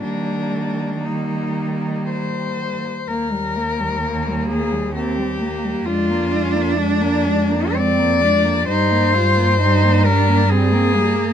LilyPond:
<<
  \new Staff \with { instrumentName = "Cello" } { \time 3/4 \key ees \major \tempo 4 = 64 d'4 ees'4 c''4 | bes'4. aes'8 g'4 | f'4 d'4 d''4 | c''4. bes'8 aes'4 | }
  \new Staff \with { instrumentName = "Cello" } { \time 3/4 \key ees \major bes4 bes2 | r4 bes4 c'8 bes8 | d'2 c'8 d'8 | ees'8 f'8 ees'8 d'8 c'8 bes8 | }
  \new Staff \with { instrumentName = "Cello" } { \clef bass \time 3/4 \key ees \major g4 g4.~ g16 r16 | bes16 g16 bes16 g16 bes16 g16 bes16 g16 bes16 g16 bes16 g16 | aes16 bes16 aes16 bes16 aes16 bes16 aes16 bes16 aes16 bes16 aes16 bes16 | g16 bes16 g16 bes16 g16 bes16 g16 bes16 g16 bes16 g16 bes16 | }
  \new Staff \with { instrumentName = "Cello" } { \clef bass \time 3/4 \key ees \major ees2. | ees,2. | f,2. | g,2. | }
>>